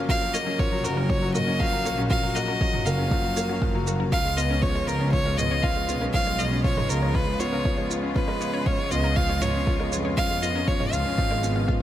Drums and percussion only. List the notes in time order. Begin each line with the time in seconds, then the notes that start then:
0.09 kick
0.34 shaker
0.59 kick
0.85 shaker
1.10 kick
1.35 mid tom, shaker
1.60 kick
1.86 shaker
2.10 kick
2.36 shaker
2.61 kick
2.74 mid tom
2.86 shaker
3.11 kick
3.37 shaker
3.62 kick
3.87 shaker
4.12 kick
4.38 shaker
4.63 kick
4.88 shaker
5.13 kick
5.39 mid tom, shaker
5.63 kick
5.89 shaker
6.14 kick
6.39 shaker
6.64 kick
6.77 mid tom
6.90 shaker
7.15 kick
7.40 shaker
7.65 kick
7.91 shaker
8.16 kick
8.41 shaker
8.66 kick
8.91 shaker
9.17 kick
9.42 mid tom, shaker
9.67 kick
9.92 shaker
10.17 kick
10.43 shaker
10.68 kick
10.80 mid tom
10.93 shaker
11.18 kick
11.43 shaker
11.69 kick